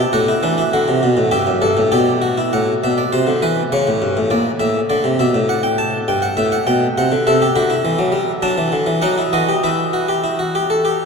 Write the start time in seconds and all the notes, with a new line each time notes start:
Already playing: G4
0.13 A2 F#4 F#5
0.28 E4
0.43 E3 D4
0.58 E4
0.73 D3 F#4
0.88 C3
1.03 B2
1.17 A2
1.31 G2 G4 E5
1.47 F#2
1.62 G2 A4
1.77 A2
1.92 B2 G4 D5
2.22 F#4
2.38 E4
2.53 A2 F#5
2.84 B2 E5
2.98 D5
3.13 C3 C5
3.27 D3
3.42 E3 B4
3.72 C#3 C#5
3.87 A2
4.02 G2
4.17 A2
4.30 A#2 D5
4.60 A2 E5
4.90 D3 D5
5.04 C3
5.19 B2 E5
5.35 A2
5.49 F#5
5.63 G5
5.78 A5
6.08 G2 G5
6.22 F#5
6.37 A2 E5
6.52 F#5
6.67 B2 G5
6.98 C3 F#5
7.12 D3
7.27 C3 A4 E5
7.42 G4
7.56 D3 F#4 B5
7.70 E4
7.85 E3
7.99 F#3
8.12 G3
8.42 F#3 D4 A5
8.58 E3
8.72 D3
8.86 E3
9.02 F#3 D#4 F#5
9.18 E4
9.33 E3 F#4 D#5
9.49 G4
9.64 E3 E4 E5
9.93 F#4
10.09 G4
10.24 E4
10.39 F#4
10.55 G4
10.70 A4
10.85 G4